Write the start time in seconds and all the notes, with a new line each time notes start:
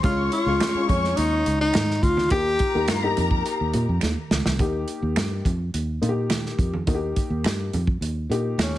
0.02 C#2 G#3 C#4 F4 C#5 C#6, kick, closed hi-hat, muted conga
0.32 F4, closed hi-hat
0.46 C#2 G#3 C#4 F4
0.60 finger snap, snare, closed hi-hat, high conga
0.74 G#3 C#4 F4, muted fingered electric bass stroke
0.88 F2 C#4, kick, closed hi-hat, muted conga, low conga
1.04 snare
1.17 D#2 D#4, closed hi-hat
1.46 C#2, closed hi-hat, muted conga
1.61 D#4
1.74 G#2, finger snap, snare, closed hi-hat, high conga
1.90 snare
2.03 D2 F4, kick, closed hi-hat
2.17 snare, high conga
2.30 D#2 A#3 D#4 G4 A#4 A#5, kick, closed hi-hat, muted conga
2.59 kick, closed hi-hat
2.74 D#2 A#3 D#4 G4
2.88 G2, finger snap, snare, closed hi-hat, high conga
3.03 A#3 D#4 G4
3.17 F2, closed hi-hat, muted conga, low conga
3.31 kick
3.46 closed hi-hat
3.61 D#2
3.73 A#2, closed hi-hat, muted conga, low conga
3.89 F2
4.01 D#2, finger snap, snare, high conga
4.31 C#2, snare, high conga
4.46 C2, snare, high conga
4.59 D#2 A#3 D#4 G4, kick, closed hi-hat, muted conga
4.88 closed hi-hat
5.02 D#2
5.16 G2, finger snap, snare, closed hi-hat, high conga
5.45 F2, kick, closed hi-hat, muted conga, low conga
5.74 D#2, closed hi-hat
6.01 A#2 A#3 D#4 F4, closed hi-hat, muted conga
6.09 G4
6.30 finger snap, snare, closed hi-hat, high conga
6.46 snare
6.58 F2, kick, closed hi-hat
6.73 high conga
6.87 D#2 A#3 D#4 F#4, kick, closed hi-hat, muted conga
6.95 G4
7.16 kick, closed hi-hat
7.30 D#2
7.44 G2, finger snap, snare, closed hi-hat, high conga
7.73 F2, closed hi-hat, muted conga, low conga
7.87 kick
8.01 D#2, closed hi-hat
8.30 A#2 A#3 D#4 G4, closed hi-hat
8.58 D#2, finger snap, snare, closed hi-hat, high conga
8.62 C#4
8.75 snare